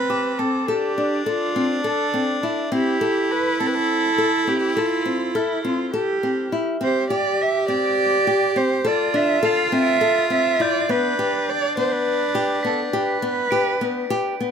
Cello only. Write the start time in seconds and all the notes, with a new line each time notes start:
Already playing: B4
0.39 A4
0.68 G4
1.27 F4
1.85 A4
2.73 G4
3.31 B4
3.60 A4
3.67 B4
3.75 A4
4.49 G4
4.78 F4
5.36 E4
5.65 F4
5.95 G4
6.83 C5
7.11 D5
7.41 E5
7.70 D5
8.57 C5
8.87 D5
9.16 E5
9.45 F5
9.73 E5
10.32 E5
10.61 D5
10.90 B4
11.49 D5
11.78 C5
11.92 B4
12.66 A4
12.95 B4